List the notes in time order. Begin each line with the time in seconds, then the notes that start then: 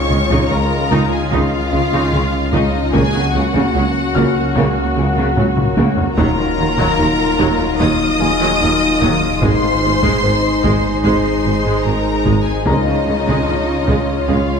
Already playing: C#2 D#3 G#3 C#4 F4 G#4 C#5 D#5 G#5 C#6
0.10 C#2 C#3 G#3, taiko mid
0.30 C#3 D#4, taiko
0.51 C#2 C#3 C#4 A#4 A#5
0.91 C#2 C#3 D#4, taiko
1.11 G#4 G#5
1.31 C#2 C#3 D#4 F4 F5, taiko
1.72 C#2 C#3 G#3
1.92 C#3 D#4
2.13 C#2 C#3 C#4, taiko mid
2.52 C#2 C#3 D#4 D#5, taiko
2.93 C#2 C#3 F#3 A#3 F#4 G#4 F#5 G#5, taiko
3.14 C#3 F#3
3.34 C#2 C#3 F#4 F#5
3.54 C#3 A#3, taiko
3.74 C#2 C#3 F#3
4.15 C#2 C#3 A#3 F#4 F6, taiko
4.55 C#2 C#3 A#3, taiko
4.96 C#2 C#3
5.16 C#3 A#3
5.36 C#2 C#3 F#3, taiko low-mid
5.57 taiko low-mid
5.77 C#2 C#3 A#3, taiko high
5.97 taiko low
6.17 D#1 D#2 D#3 F#3 D#4 F4 A#4 F5 A#5, taiko
6.38 D#3 F3
6.58 D#2 D#3
6.78 D#3 F#3, taiko
6.99 D#2 D#3 F3
7.39 D#2 D#3 F#3, taiko
7.80 D#2 D#3 F#3 D#5 D#6, taiko
8.20 D#2 D#3 G#4 G#5
8.40 D#3 F#3
8.61 D#2 D#3 F3
9.01 D#2 D#3 F#3, taiko
9.42 G#1 G#2 G#3 G#4 C5 C6, taiko
9.62 G#2 D#3
9.83 G#1 G#2 C3
10.03 G#2 G#3, taiko
10.23 G#1 G#2 D#3 D#4
10.63 G#1 G#2 G#3, taiko
11.04 G#1 G#2 G#3 C5 C6, taiko
11.45 G#1 G#2 C3
11.65 G#2 G#3
11.85 G#1 G#2 D#3 A#4 A#5
12.26 G#1 G#2 G#3, taiko
12.46 G#4 G#5
12.66 C#2 C#3 G#3 C#4 D#4 F4 A#4 C#5 D#5 A#5, taiko
12.87 C#3 F3
13.07 C#2 C#3 D#3
13.27 C#3 G#3, taiko
13.47 C#2 C#3 F3
13.88 C#2 C#3 G#3, taiko
14.28 C#2 C#3 G#3 F4 F5, taiko